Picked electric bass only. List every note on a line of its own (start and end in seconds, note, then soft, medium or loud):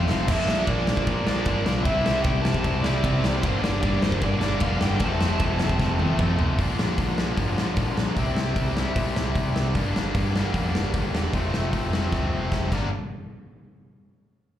0.09 0.23 F1 loud
0.29 0.43 A#1 loud
0.48 0.62 A#1 medium
0.68 0.82 A#1 loud
0.88 1.02 A#1 medium
1.07 1.21 A#1 loud
1.28 1.41 A#1 medium
1.46 1.61 G1 loud
1.67 1.81 B1 loud
1.85 2.00 C2 medium
2.06 2.20 C2 medium
2.25 2.53 C2 loud
2.64 2.78 C2 loud
2.86 2.99 C2 loud
3.04 3.18 C3 loud
3.23 3.37 C2 loud
3.44 3.58 G1 loud
3.64 3.78 G1 loud
3.83 3.97 G1 loud
4.03 4.17 G1 medium
4.22 4.36 G1 loud
4.42 4.56 G1 medium
4.62 4.76 F1 loud
4.83 4.96 G1 loud
5.00 5.15 F1 loud
5.21 5.35 F1 medium
5.40 5.68 F1 loud
5.80 5.94 F1 loud
6.00 6.14 F1 medium
6.19 6.33 F2 loud
6.39 6.53 F1 loud
6.59 6.73 A#1 medium
6.80 6.93 A#1 medium
6.98 7.25 A#1 medium
7.38 7.51 G2 loud
7.59 7.72 A#1 medium
7.76 7.91 A#1 medium
7.98 8.11 A#1 loud
8.17 8.31 C2 medium
8.38 8.51 C2 medium
8.56 8.83 C2 medium
8.95 9.09 A#2 loud
9.17 9.31 C2 medium
9.35 9.49 C2 loud
9.57 9.77 C2 loud
9.76 9.89 G1 medium
9.97 10.10 G1 medium
10.15 10.42 G1 medium
10.54 10.68 F2 medium
10.76 10.89 G1 medium
10.94 11.08 G1 medium
11.14 11.28 E1 medium
11.33 11.47 F1 medium
11.54 11.67 F1 medium
11.73 12.00 F1 medium
12.12 12.26 D2 medium
12.33 12.47 F1 medium
12.52 12.66 F1 medium
12.72 12.90 G1 medium